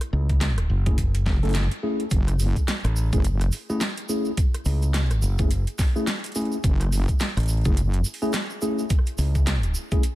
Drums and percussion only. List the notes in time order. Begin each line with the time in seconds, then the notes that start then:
0.01 cross-stick, closed hi-hat
0.29 kick, closed hi-hat
0.41 snare, closed hi-hat
0.58 cross-stick, closed hi-hat
0.86 kick, closed hi-hat
0.98 kick, closed hi-hat
1.15 closed hi-hat
1.26 kick, snare
1.43 closed hi-hat
1.45 closed hi-hat
1.49 closed hi-hat
1.51 closed hi-hat
1.53 snare, closed hi-hat
1.55 closed hi-hat
1.71 closed hi-hat
2.00 closed hi-hat
2.10 kick, closed hi-hat, shaker
2.28 cross-stick, closed hi-hat, shaker
2.39 open hi-hat, shaker
2.56 kick, closed hi-hat, shaker
2.68 snare, closed hi-hat, shaker
2.84 cross-stick, closed hi-hat, shaker
2.96 shaker
3.12 kick, closed hi-hat, shaker
3.24 closed hi-hat, shaker
3.41 cross-stick, closed hi-hat, shaker
3.52 open hi-hat, shaker
3.70 shaker
3.80 snare, closed hi-hat, shaker
3.97 closed hi-hat, shaker
4.09 shaker
4.25 shaker
4.37 kick, closed hi-hat, shaker
4.54 cross-stick, closed hi-hat, shaker
4.65 open hi-hat, shaker
4.82 closed hi-hat, shaker
4.94 snare, closed hi-hat, shaker
5.10 cross-stick, closed hi-hat, shaker
5.22 shaker
5.38 kick, closed hi-hat, shaker
5.51 closed hi-hat, shaker
5.67 closed hi-hat, shaker
5.78 kick, snare, open hi-hat, shaker
5.96 shaker
6.07 snare, closed hi-hat, shaker
6.24 closed hi-hat, shaker
6.26 closed hi-hat
6.32 closed hi-hat, shaker
6.36 closed hi-hat
6.41 closed hi-hat
6.45 closed hi-hat
6.52 shaker
6.64 kick, closed hi-hat, shaker
6.80 cross-stick, closed hi-hat, shaker
6.83 cross-stick
6.87 cross-stick
6.88 cross-stick
6.91 cross-stick, open hi-hat, shaker
7.08 kick, closed hi-hat, shaker
7.19 snare, closed hi-hat, shaker
7.37 cross-stick, closed hi-hat, shaker
7.40 closed hi-hat
7.43 closed hi-hat
7.46 closed hi-hat, shaker
7.49 closed hi-hat
7.53 closed hi-hat
7.57 closed hi-hat
7.61 closed hi-hat, shaker
7.65 kick, closed hi-hat
7.77 closed hi-hat, shaker
7.93 closed hi-hat, shaker
8.04 shaker
8.14 open hi-hat
8.22 shaker
8.33 snare, closed hi-hat, shaker
8.50 shaker
8.62 shaker
8.79 shaker
8.90 kick, closed hi-hat, shaker
8.99 cross-stick
9.06 closed hi-hat, shaker
9.18 open hi-hat, shaker
9.35 kick, closed hi-hat, shaker
9.46 snare, closed hi-hat, shaker
9.63 closed hi-hat, shaker
9.75 shaker
9.91 kick, closed hi-hat, shaker
10.03 closed hi-hat, shaker